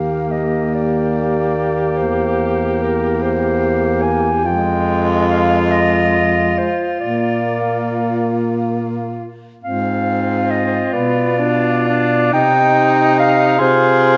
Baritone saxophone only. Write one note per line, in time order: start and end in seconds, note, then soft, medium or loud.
0.00 2.03 D#2 soft
2.02 4.46 E2 soft
4.44 6.72 F2 medium
7.01 9.28 A#2 soft
9.64 10.90 G#2 soft
10.95 12.30 B2 medium
12.33 13.56 C3 medium
13.60 14.17 C3 medium